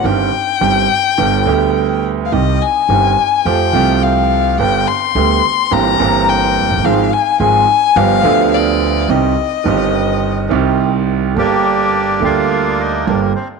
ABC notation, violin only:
X:1
M:4/4
L:1/16
Q:1/4=106
K:Cm
V:1 name="Violin"
g12- g2 z3/2 f/2 | e2 a6 g4 f4 | g2 c'6 b4 g4 | f2 a2 a4 f4 d4 |
e12 z4 | [K:Gm] z16 |]